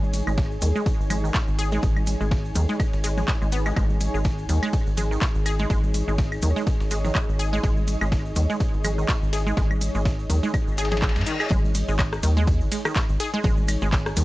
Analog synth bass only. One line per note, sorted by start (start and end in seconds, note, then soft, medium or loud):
0.00 0.22 G#1 loud
0.27 0.58 G#1 medium
0.62 0.72 D#2 loud
1.00 1.30 G#1 medium
1.48 1.79 G#1 medium
1.83 2.15 G#1 medium
2.21 2.51 G#1 medium
2.55 2.66 D#2 loud
2.93 3.24 G#1 medium
3.42 3.72 G#1 loud
3.76 4.09 G#1 loud
4.14 4.45 G#1 medium
4.49 4.59 D#2 loud
4.87 5.17 G#1 medium
5.35 5.66 G#1 medium
5.70 6.02 G#1 loud
6.08 6.38 G#1 medium
6.43 6.53 D#2 loud
6.80 7.11 G#1 medium
7.29 7.59 G#1 medium
7.64 7.96 G#1 medium
8.01 8.32 G#1 medium
8.36 8.46 D#2 loud
8.74 9.04 G#1 medium
9.22 9.53 G#1 loud
9.57 9.89 G#1 medium
9.95 10.25 G#1 medium
10.30 10.40 D#2 loud
10.67 11.17 G#1 medium
11.16 11.24 G#2 medium
11.51 11.83 G#1 medium
11.88 12.19 G#1 medium
12.23 12.63 D#2 loud
12.61 12.69 F#1 medium
13.09 13.17 G#1 medium
13.44 13.77 G#1 medium
13.82 14.13 G#1 medium
14.17 14.24 D#2 loud